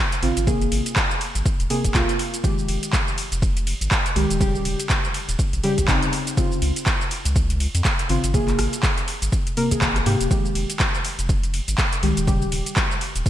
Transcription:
Already playing: synth stab C#3 C4 F4
0.12 closed hi-hat, shaker
0.22 analog synth bass G#1, synth stab C#3 C4 F4, open hi-hat, ride
0.37 analog synth bass G#1, closed hi-hat, shaker
0.47 synth stab C3 A#3 G#4, kick, ride, shaker
0.61 closed hi-hat, shaker
0.72 analog synth bass G#1, open hi-hat, ride
0.86 closed hi-hat, shaker
0.96 kick, clap, ride, shaker
1.11 shaker
1.21 open hi-hat, ride
1.35 analog synth bass G#1, closed hi-hat, shaker
1.46 kick, ride, shaker
1.60 analog synth bass D#1, closed hi-hat, shaker
1.70 synth stab C3 A#3 G#4, open hi-hat, ride
1.84 analog synth bass D#1, kick, closed hi-hat, shaker
1.95 analog synth bass C2, synth stab C3 A#3 F4, kick, clap, ride, shaker
2.09 closed hi-hat, shaker
2.19 open hi-hat, ride
2.34 closed hi-hat, shaker
2.44 synth stab D#3 G#3 G4, kick, ride, shaker
2.59 shaker
2.68 analog synth bass F1, open hi-hat, ride
2.83 closed hi-hat, shaker
2.93 kick, clap, ride, shaker
3.08 shaker
3.18 open hi-hat, ride
3.32 analog synth bass F1, closed hi-hat, shaker
3.42 kick, ride, shaker
3.57 closed hi-hat, shaker
3.67 open hi-hat, ride
3.81 analog synth bass G#1, closed hi-hat, shaker
3.91 kick, clap, ride, shaker
4.06 closed hi-hat, shaker
4.16 analog synth bass C2, synth stab D#3 G#3 G4, open hi-hat, ride
4.30 analog synth bass D#1, closed hi-hat, shaker
4.40 synth stab C#3 G3 G4, kick, ride, shaker
4.55 shaker
4.65 analog synth bass D#1, open hi-hat, ride
4.80 closed hi-hat, shaker
4.90 kick, clap, ride, shaker
5.04 shaker
5.14 open hi-hat, ride
5.29 analog synth bass D#1, closed hi-hat, shaker
5.39 kick, ride, shaker
5.53 analog synth bass A#1, closed hi-hat, shaker
5.63 synth stab C#3 G3 G4, open hi-hat, ride
5.78 analog synth bass C#2, kick, closed hi-hat, shaker
5.88 analog synth bass G1, synth stab C#3 C4 D#4, kick, clap, ride, shaker
6.03 closed hi-hat, shaker
6.13 open hi-hat, ride
6.27 closed hi-hat, shaker
6.37 synth stab C#3 C4 F4, kick, ride, shaker
6.52 shaker
6.62 analog synth bass C#2, open hi-hat, ride
6.76 closed hi-hat, shaker
6.86 kick, clap, ride, shaker
7.01 shaker
7.11 open hi-hat, ride
7.25 analog synth bass C#2, closed hi-hat, shaker
7.36 kick, ride, shaker
7.50 closed hi-hat, shaker
7.60 open hi-hat, ride
7.75 analog synth bass F2, closed hi-hat, shaker
7.85 kick, clap, ride, shaker
7.99 closed hi-hat, shaker
8.09 analog synth bass G#1, synth stab C#3 C4 F4, open hi-hat, ride
8.24 analog synth bass G#1, closed hi-hat, shaker
8.34 synth stab C3 A#3 G#4, kick, ride, shaker
8.48 clap, closed hi-hat, shaker
8.59 analog synth bass G#1, cross-stick, open hi-hat, ride
8.73 closed hi-hat, shaker
8.83 kick, clap, ride, shaker
8.98 closed hi-hat, shaker
9.08 open hi-hat, ride
9.22 analog synth bass G#1, closed hi-hat, shaker
9.32 kick, ride, shaker
9.47 closed hi-hat, shaker
9.57 synth stab C3 A#3 A#4, open hi-hat, ride
9.71 analog synth bass G#1, synth stab C3 A#3 G#4, kick, closed hi-hat, shaker
9.81 kick, clap, ride, shaker
9.96 cross-stick, closed hi-hat, shaker
10.06 analog synth bass G#2, synth stab C3 A#3 G4, open hi-hat, ride
10.21 analog synth bass D#1, closed hi-hat, shaker
10.30 synth stab D#3 G#3 G4, kick, ride, shaker
10.45 shaker
10.55 analog synth bass F1, open hi-hat, ride
10.70 closed hi-hat, shaker
10.80 kick, clap, ride, shaker
10.94 shaker
11.05 open hi-hat, ride
11.19 analog synth bass F1, closed hi-hat, shaker
11.29 kick, ride, shaker
11.43 closed hi-hat, shaker
11.54 open hi-hat, ride
11.68 analog synth bass G#1, closed hi-hat, shaker
11.78 kick, clap, ride, shaker
11.93 closed hi-hat, shaker
12.03 analog synth bass C2, synth stab D#3 G#3 G4, open hi-hat, ride
12.17 analog synth bass D#1, closed hi-hat, shaker
12.27 synth stab C#3 G3 G4, kick, ride, shaker
12.42 shaker
12.52 analog synth bass D#1, open hi-hat, ride
12.66 closed hi-hat, shaker
12.76 kick, clap, ride, shaker
12.91 shaker
13.01 open hi-hat, ride
13.16 analog synth bass D#1, closed hi-hat, shaker
13.26 kick, ride, shaker

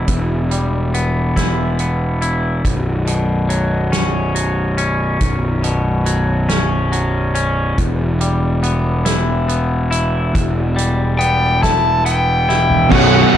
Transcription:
Already playing: clean electric guitar B3 E4
0.08 picked electric bass E1, clean electric guitar E2, kick, closed hi-hat
0.51 clean electric guitar G3, closed hi-hat
0.94 clean electric guitar B3, closed hi-hat
1.36 clean electric guitar E4, kick, snare, closed hi-hat
1.79 clean electric guitar B3, closed hi-hat
2.22 clean electric guitar E4, closed hi-hat
2.65 picked electric bass B0, clean electric guitar B1, kick, closed hi-hat
3.07 clean electric guitar B2, closed hi-hat
3.49 clean electric guitar F#3, closed hi-hat
3.92 clean electric guitar C#4, snare, closed hi-hat
4.35 clean electric guitar F#3, closed hi-hat
4.78 clean electric guitar C#4, closed hi-hat
5.21 picked electric bass B0, clean electric guitar B1, kick, closed hi-hat
5.64 clean electric guitar B2, closed hi-hat
6.06 clean electric guitar F#3, closed hi-hat
6.49 clean electric guitar C#4, snare, closed hi-hat
6.92 clean electric guitar F#3, closed hi-hat
7.35 clean electric guitar C#4, closed hi-hat
7.78 picked electric bass E1, clean electric guitar E2, kick, closed hi-hat
8.21 clean electric guitar G3, closed hi-hat
8.63 clean electric guitar B3, closed hi-hat
9.05 clean electric guitar E4, snare, closed hi-hat
9.48 clean electric guitar B3, closed hi-hat
9.91 clean electric guitar E4, closed hi-hat
10.33 picked electric bass E1, clean electric guitar E2, kick, closed hi-hat
10.76 clean electric guitar G3, closed hi-hat
11.19 clean electric guitar B3, overdriven electric guitar G5, closed hi-hat
11.62 clean electric guitar E4, overdriven electric guitar A5, kick, snare, closed hi-hat
12.06 clean electric guitar B3, overdriven electric guitar G5, closed hi-hat
12.49 clean electric guitar E4, snare
12.70 floor tom
12.90 picked electric bass B0, distorted electric guitar B1 F#2 B2 F#3 C#4, clean electric guitar B1, overdriven electric guitar F#5, kick, crash
12.99 overdriven electric guitar F#5
13.07 overdriven electric guitar F#5
13.15 overdriven electric guitar F#5
13.23 overdriven electric guitar F#5
13.30 clean electric guitar F#2, distorted electric guitar C#4, overdriven electric guitar F#5

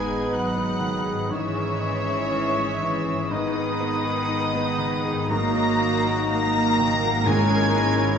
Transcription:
Already playing: double bass section G#1, harp G#2 B2 B3 D#4 G#4, felt piano G#2 B3 D#4, cello section G#3, french horn section G#3 B3, viola section D#4 B4, clarinet G#4, oboe D#5, violin section G#5 G#6, flute B5
0.05 felt piano G#4
0.30 cello section F#3, felt piano D#4, violin section F#5 F#6
0.55 felt piano B3
0.80 felt piano D#3
1.04 felt piano G#4
1.13 harp G#2
1.17 harp G#3
1.22 harp C#4
1.26 felt piano G#2, french horn section C#4, harp G#4
1.30 cello section E3, viola section C#4 C#5, oboe C#5, violin section E5 E6, flute C#6
1.56 felt piano C#4
1.81 felt piano G#3
2.06 felt piano G#4
2.31 felt piano C#4
2.57 felt piano G#3
2.83 felt piano E3
3.06 felt piano G#4
3.12 harp G#2
3.17 harp B3
3.21 harp D#4
3.30 felt piano G#2, cello section D#3, french horn section B3, viola section D#4 B4, violin section D#5 D#6, oboe D#5, flute B5
3.56 felt piano D#4
3.80 felt piano B3
4.05 felt piano G#4
4.29 felt piano D#4
4.54 felt piano B3
4.78 felt piano D#3
5.05 felt piano G#4
5.12 harp G#2
5.17 harp A#3
5.21 harp D#4
5.26 harp F#4
5.30 double bass section G#1, felt piano G#2, french horn section F#3 D#4, cello section A#3, clarinet F#4, viola section A#4, flute A#5, violin section A#5 A#6
5.55 felt piano D#4
5.80 felt piano A#3
6.06 felt piano F#4
6.29 cello section A#3, felt piano D#4, violin section A#5 A#6
6.54 felt piano A#3
6.79 felt piano D#3
7.04 harp G#2, felt piano F#4
7.17 harp C#4
7.22 french horn section A#3 C#4, harp E4
7.26 timpani G#2, felt piano G#2, cello section G#3, viola section C#4, clarinet E4, oboe C#5, violin section G#5 G#6
7.50 felt piano C#4
7.75 felt piano A#3
7.99 felt piano E4

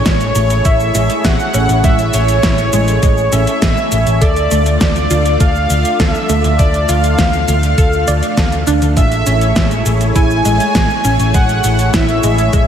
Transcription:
Already playing: analog synth pad A3 E4 G#4 C#5
0.06 synth arpeggio sound G#3, supersaw synth C#5, kick, snare, closed hi-hat, shaker
0.21 closed hi-hat, shaker
0.35 picked electric bass A1, closed hi-hat, shaker
0.50 closed hi-hat, shaker
0.65 picked electric bass A1, synth arpeggio sound E4, supersaw synth E5, kick, closed hi-hat, shaker
0.80 shaker
0.95 picked electric bass A1, synth arpeggio sound G#3, closed hi-hat, shaker
1.10 closed hi-hat, shaker
1.24 picked electric bass A1, synth arpeggio sound G#3, supersaw synth F#5, kick, snare, closed hi-hat, shaker
1.39 shaker
1.54 picked electric bass A1, synth arpeggio sound C#4, closed hi-hat, shaker
1.69 picked electric bass A1, closed hi-hat, shaker
1.84 picked electric bass A1, synth arpeggio sound G#3, supersaw synth E5, kick, closed hi-hat, shaker
1.99 closed hi-hat, shaker
2.14 picked electric bass A1, supersaw synth C#5, closed hi-hat, shaker
2.28 closed hi-hat, shaker
2.43 picked electric bass A1, synth arpeggio sound E4, kick, snare, closed hi-hat, shaker
2.58 closed hi-hat, shaker
2.73 picked electric bass A1, synth arpeggio sound G#3, closed hi-hat, shaker
2.88 closed hi-hat, shaker
3.03 picked electric bass A1, synth arpeggio sound G#3, kick, closed hi-hat, shaker
3.18 shaker
3.32 picked electric bass A1, synth arpeggio sound C#4, supersaw synth E5, closed hi-hat, shaker
3.47 closed hi-hat, shaker
3.62 picked electric bass A1, synth arpeggio sound G#3, kick, snare, closed hi-hat, shaker
3.77 shaker
3.92 picked electric bass A1, closed hi-hat, shaker
4.07 picked electric bass A1, closed hi-hat, shaker
4.22 picked electric bass D2, analog synth pad D4 F4 D5, synth arpeggio sound A4, supersaw synth D5, kick, closed hi-hat, shaker
4.36 closed hi-hat, shaker
4.51 picked electric bass D2, synth arpeggio sound A3, closed hi-hat, shaker
4.66 closed hi-hat, shaker
4.81 synth arpeggio sound A3, supersaw synth D5, kick, snare, closed hi-hat, shaker
4.96 closed hi-hat, shaker
5.11 picked electric bass D2, synth arpeggio sound F4, closed hi-hat, shaker
5.26 closed hi-hat, shaker
5.40 picked electric bass D2, synth arpeggio sound A3, supersaw synth F5, kick, closed hi-hat, shaker
5.55 shaker
5.70 picked electric bass D2, closed hi-hat, shaker
5.85 closed hi-hat, shaker
6.00 picked electric bass D2, synth arpeggio sound A4, supersaw synth F5, kick, snare, closed hi-hat, shaker
6.11 supersaw synth E5, shaker
6.29 picked electric bass D2, synth arpeggio sound A3, closed hi-hat, shaker
6.44 picked electric bass D2, closed hi-hat, shaker
6.59 picked electric bass D2, synth arpeggio sound A3, supersaw synth D5, analog synth pad F5, kick, closed hi-hat, shaker
6.74 closed hi-hat, shaker
6.89 picked electric bass D2, synth arpeggio sound F4, supersaw synth F5, closed hi-hat, shaker
7.04 closed hi-hat, shaker
7.18 picked electric bass D2, synth arpeggio sound A3, kick, snare, closed hi-hat, shaker
7.33 closed hi-hat, shaker
7.48 picked electric bass D2, closed hi-hat, shaker
7.63 closed hi-hat, shaker
7.78 picked electric bass D2, synth arpeggio sound A4, kick, closed hi-hat, shaker
7.93 shaker
8.08 picked electric bass D2, synth arpeggio sound D5, closed hi-hat, shaker
8.23 closed hi-hat, shaker
8.37 picked electric bass D2, synth arpeggio sound A4, kick, snare, closed hi-hat, shaker
8.52 closed hi-hat, shaker
8.67 picked electric bass D2, synth arpeggio sound D4, closed hi-hat, shaker
8.82 picked electric bass D2, closed hi-hat, shaker
8.97 picked electric bass A1, synth arpeggio sound G#3, analog synth pad E4 G#4 C#5, supersaw synth E5, kick, closed hi-hat, shaker
9.12 closed hi-hat, shaker
9.26 picked electric bass A1, synth arpeggio sound C#4, closed hi-hat, shaker
9.41 closed hi-hat, shaker
9.56 synth arpeggio sound G#3, kick, snare, closed hi-hat, shaker
9.71 closed hi-hat, shaker
9.86 picked electric bass A1, closed hi-hat, shaker
10.01 closed hi-hat, shaker
10.16 picked electric bass A1, synth arpeggio sound E4, supersaw synth G#5, kick, closed hi-hat, shaker
10.30 shaker
10.45 picked electric bass A1, synth arpeggio sound G#3, closed hi-hat, shaker
10.60 closed hi-hat, shaker
10.75 picked electric bass A1, synth arpeggio sound G#3, kick, snare, closed hi-hat, shaker
10.90 shaker
11.05 picked electric bass A1, synth arpeggio sound C#4, closed hi-hat, shaker
11.19 picked electric bass A1, closed hi-hat, shaker
11.34 picked electric bass A1, synth arpeggio sound G#3, supersaw synth F#5, kick, closed hi-hat, shaker
11.49 closed hi-hat, shaker
11.64 picked electric bass A1, closed hi-hat, shaker
11.79 closed hi-hat, shaker
11.94 synth arpeggio sound E4, supersaw synth E5, kick, snare, closed hi-hat, shaker
12.09 closed hi-hat, shaker
12.23 picked electric bass A1, synth arpeggio sound G#3, closed hi-hat, shaker
12.38 closed hi-hat, shaker
12.53 picked electric bass A1, synth arpeggio sound G#3, kick, closed hi-hat, shaker

